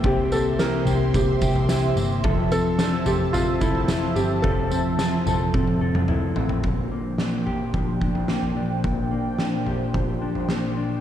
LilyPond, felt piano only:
\new Staff \with { instrumentName = "Felt piano" } { \time 4/4 \key bes \lydian \tempo 4 = 109 g'8 a'8 bes'4 g'4. r8 | r8 a'4 g'8 f'8 e'4 g'8 | a'2. r4 | r1 |
r1 | }